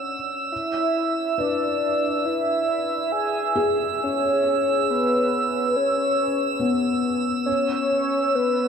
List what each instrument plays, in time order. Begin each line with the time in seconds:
Already playing: felt piano F#5, synth texture E6
0.52 soft synth lead E5
1.38 felt piano B4, soft synth lead D5
2.26 soft synth lead E5
3.12 soft synth lead G#5
3.56 felt piano G#4
4.03 soft synth lead C#5
4.90 soft synth lead B4
5.76 soft synth lead C#5
6.60 felt piano B3
7.46 soft synth lead C#5
8.35 soft synth lead B4